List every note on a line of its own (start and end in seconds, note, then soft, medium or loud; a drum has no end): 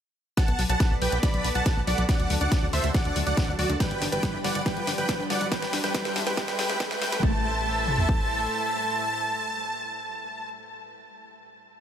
0.37 0.44 F#3 medium
0.37 2.07 B3 medium
0.37 3.77 F#4 medium
0.37 3.77 A4 medium
0.37 2.07 D5 medium
0.37 0.62 F#5 medium
0.37 0.62 A5 medium
0.37 2.07 B5 medium
0.37 kick loud
0.37 snare soft
0.37 closed hi-hat medium
0.37 riser medium
0.48 0.55 B1 medium
0.48 0.53 B3 medium
0.48 closed hi-hat soft
0.59 0.65 B1 loud
0.59 0.66 F#3 medium
0.59 open hi-hat loud
0.69 0.76 B1 medium
0.69 0.77 F#3 medium
0.69 0.95 F#5 medium
0.69 0.95 A5 loud
0.69 closed hi-hat soft
0.69 mid tom medium
0.80 0.85 B3 medium
0.80 kick loud
0.80 snare medium
0.80 closed hi-hat medium
0.91 0.98 B1 medium
0.91 0.98 F#3 medium
1.02 1.08 B1 loud
1.02 1.09 F#3 medium
1.02 1.18 B4 medium
1.02 1.18 G5 medium
1.02 open hi-hat medium
1.12 1.19 B1 medium
1.12 1.17 B3 medium
1.12 closed hi-hat medium
1.12 mid tom medium
1.23 1.30 F#3 medium
1.23 1.48 D5 medium
1.23 1.48 B5 medium
1.23 kick loud
1.23 snare soft
1.23 closed hi-hat medium
1.34 1.41 B1 medium
1.34 1.41 F#3 medium
1.34 closed hi-hat soft
1.44 1.51 B1 loud
1.44 1.49 B3 medium
1.44 open hi-hat loud
1.55 1.62 B1 medium
1.55 1.62 F#3 medium
1.55 1.80 F#5 medium
1.55 1.80 A5 loud
1.55 closed hi-hat medium
1.66 1.73 F#3 medium
1.66 kick loud
1.66 snare medium
1.66 closed hi-hat medium
1.77 1.83 B1 medium
1.77 1.81 B3 medium
1.87 1.94 B1 loud
1.87 1.94 F#3 medium
1.87 2.04 D5 medium
1.87 2.04 F#5 medium
1.87 open hi-hat medium
1.87 mid tom medium
1.98 2.05 B1 medium
1.98 2.05 F#3 medium
1.98 closed hi-hat medium
2.09 3.78 D3 medium
2.09 5.48 D4 medium
2.09 2.13 D4 medium
2.09 2.34 D5 medium
2.09 2.34 F#5 medium
2.09 3.78 A5 medium
2.09 kick loud
2.09 snare medium
2.09 closed hi-hat medium
2.19 2.26 D2 medium
2.19 2.27 F#3 medium
2.19 closed hi-hat soft
2.30 2.37 D2 loud
2.30 2.37 F#3 medium
2.30 open hi-hat loud
2.41 2.48 D2 medium
2.41 2.46 D4 medium
2.41 2.66 D5 medium
2.41 2.66 F#5 loud
2.41 closed hi-hat soft
2.41 mid tom medium
2.52 2.59 F#3 medium
2.52 kick loud
2.52 snare medium
2.52 closed hi-hat medium
2.62 2.69 D2 medium
2.62 2.69 F#3 medium
2.73 2.80 D2 loud
2.73 2.78 D4 medium
2.73 2.90 C5 medium
2.73 2.90 E5 medium
2.73 open hi-hat medium
2.84 2.91 D2 medium
2.84 2.91 F#3 medium
2.84 closed hi-hat medium
2.84 mid tom medium
2.94 3.02 F#3 medium
2.94 3.20 D5 medium
2.94 3.20 F#5 medium
2.94 kick loud
2.94 snare medium
2.94 closed hi-hat medium
3.05 3.12 D2 medium
3.05 3.10 D4 medium
3.05 closed hi-hat soft
3.16 3.23 D2 loud
3.16 3.23 F#3 medium
3.16 open hi-hat loud
3.27 3.33 D2 medium
3.27 3.34 F#3 medium
3.27 3.52 D5 medium
3.27 3.52 F#5 loud
3.27 closed hi-hat medium
3.37 3.42 D4 medium
3.37 kick loud
3.37 snare medium
3.37 closed hi-hat medium
3.48 3.55 D2 medium
3.48 3.55 F#3 medium
3.48 mid tom medium
3.59 3.66 D2 loud
3.59 3.66 F#3 medium
3.59 3.75 F#4 medium
3.59 3.75 D5 medium
3.59 open hi-hat medium
3.69 3.76 D2 medium
3.69 3.74 D4 medium
3.69 closed hi-hat medium
3.69 mid tom medium
3.80 3.87 G3 medium
3.80 5.50 G4 medium
3.80 5.50 B4 medium
3.80 4.05 B4 medium
3.80 4.05 G5 medium
3.80 kick loud
3.80 snare medium
3.80 closed hi-hat medium
3.91 3.98 G1 medium
3.91 3.98 G3 medium
3.91 closed hi-hat soft
4.02 4.08 G1 loud
4.02 4.06 D4 medium
4.02 snare medium
4.02 open hi-hat loud
4.12 4.19 G1 medium
4.12 4.19 G3 medium
4.12 4.37 B4 medium
4.12 4.37 G5 medium
4.12 closed hi-hat soft
4.12 mid tom medium
4.23 4.30 G3 medium
4.23 kick loud
4.23 snare medium
4.23 closed hi-hat medium
4.34 4.40 G1 medium
4.34 4.38 D4 medium
4.44 4.51 G1 loud
4.44 4.51 G3 medium
4.44 4.61 D5 medium
4.44 4.61 F#5 medium
4.44 snare medium
4.44 open hi-hat loud
4.55 4.62 G1 loud
4.55 4.62 G3 medium
4.55 closed hi-hat medium
4.55 mid tom medium
4.66 4.73 G3 medium
4.66 4.91 B4 medium
4.66 4.91 G5 medium
4.66 kick loud
4.66 snare medium
4.66 closed hi-hat medium
4.77 4.83 G1 medium
4.77 4.84 G3 medium
4.77 closed hi-hat soft
4.87 4.94 G1 loud
4.87 4.92 D4 medium
4.87 snare medium
4.87 open hi-hat loud
4.98 5.05 G1 medium
4.98 5.05 G3 medium
4.98 5.23 B4 medium
4.98 5.23 G5 medium
4.98 closed hi-hat soft
5.09 5.16 G3 medium
5.09 kick loud
5.09 snare medium
5.09 closed hi-hat medium
5.19 5.26 G1 medium
5.19 5.24 D4 medium
5.30 5.37 G1 loud
5.30 5.37 G3 medium
5.30 5.47 D5 medium
5.30 5.47 F#5 medium
5.30 snare medium
5.30 open hi-hat loud
5.30 mid tom medium
5.41 5.48 G1 medium
5.41 5.48 G3 medium
5.41 closed hi-hat medium
5.52 5.59 G3 medium
5.52 7.21 E4 medium
5.52 7.21 A4 medium
5.52 5.77 B4 medium
5.52 7.21 C5 medium
5.52 5.77 G5 loud
5.52 kick loud
5.52 snare medium
5.52 closed hi-hat medium
5.62 5.69 A1 medium
5.62 5.69 G3 medium
5.62 snare medium
5.62 closed hi-hat soft
5.73 5.80 A1 loud
5.73 5.78 D4 medium
5.73 snare medium
5.73 open hi-hat loud
5.84 5.90 A1 medium
5.84 5.91 G3 medium
5.84 5.93 B4 medium
5.84 5.93 G5 medium
5.84 snare medium
5.84 closed hi-hat soft
5.84 mid tom medium
5.94 6.20 B4 medium
5.94 6.20 G5 loud
5.94 kick loud
5.94 snare loud
5.94 closed hi-hat medium
6.05 6.12 A1 medium
6.05 6.12 G3 medium
6.05 snare medium
6.05 closed hi-hat soft
6.16 6.23 A1 loud
6.16 6.21 D4 medium
6.16 snare loud
6.16 open hi-hat medium
6.27 6.33 A1 medium
6.27 6.34 G3 medium
6.27 6.36 B4 medium
6.27 6.36 G5 loud
6.27 snare medium
6.27 closed hi-hat medium
6.27 mid tom medium
6.37 6.44 G3 medium
6.37 6.57 B4 medium
6.37 6.57 G5 loud
6.37 kick loud
6.37 snare loud
6.37 closed hi-hat medium
6.48 6.55 A1 medium
6.48 6.55 G3 medium
6.48 snare medium
6.48 closed hi-hat soft
6.59 6.65 A1 loud
6.59 6.66 G3 medium
6.59 6.78 B4 medium
6.59 6.78 G5 loud
6.59 snare loud
6.59 open hi-hat loud
6.69 6.76 A1 medium
6.69 6.77 G3 medium
6.69 snare medium
6.69 closed hi-hat soft
6.80 6.87 G3 medium
6.80 7.00 B4 medium
6.80 7.00 G5 loud
6.80 kick loud
6.80 snare loud
6.80 closed hi-hat medium
6.91 6.98 A1 medium
6.91 6.98 G3 medium
6.91 snare loud
6.91 mid tom medium
7.02 7.08 A1 loud
7.02 7.09 G3 medium
7.02 7.21 B4 medium
7.02 7.21 G5 loud
7.02 snare loud
7.02 open hi-hat medium
7.12 7.19 A1 medium
7.12 7.19 G3 medium
7.12 snare loud
7.12 closed hi-hat medium
7.12 mid tom medium
7.23 8.48 A1 loud
7.23 10.49 A2 medium
7.23 10.49 A3 medium
7.23 7.43 A3 medium
7.23 10.49 E4 medium
7.23 10.49 C5 medium
7.23 10.49 E5 medium
7.23 10.49 A5 loud
7.23 kick loud
7.87 mid tom medium
7.98 floor tom medium
8.09 kick medium